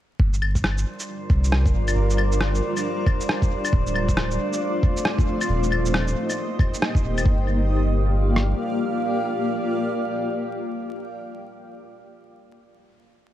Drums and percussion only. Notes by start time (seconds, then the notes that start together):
0.20 kick
0.34 shaker
0.42 claves
0.55 kick, shaker
0.64 cross-stick
0.78 shaker
0.99 shaker
1.30 kick
1.44 shaker
1.52 cross-stick
1.66 kick, shaker
1.88 claves, shaker
2.10 shaker
2.18 claves
2.32 shaker
2.41 cross-stick
2.55 shaker
2.77 claves, shaker
3.07 kick, claves
3.21 shaker
3.29 cross-stick
3.42 kick, shaker
3.65 claves, shaker
3.73 kick
3.87 shaker
3.95 claves
4.09 kick, shaker
4.17 cross-stick
4.31 shaker
4.53 shaker
4.83 kick
4.97 shaker
5.05 cross-stick
5.19 kick, shaker
5.41 claves, shaker
5.63 shaker
5.72 claves
5.86 shaker
5.94 cross-stick
6.08 shaker
6.30 claves, shaker
6.59 kick, claves
6.74 shaker
6.82 cross-stick
6.95 kick, shaker
7.18 claves, shaker
7.26 kick
8.36 cross-stick